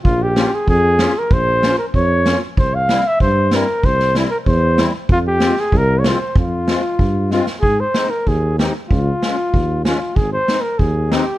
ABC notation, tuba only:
X:1
M:2/4
L:1/8
Q:1/4=95
K:Fm
V:1 name="Tuba" clef=bass
B,,,2 F,,2 | B,,,2 F,,2 | C,,2 G,,2 | C,,2 =E,,2 |
F,,2 C,,2 | F,,2 G,,2 | [K:Ab] A,, z E,,2 | D,, z E,,2 |
A,,, z E,,2 |]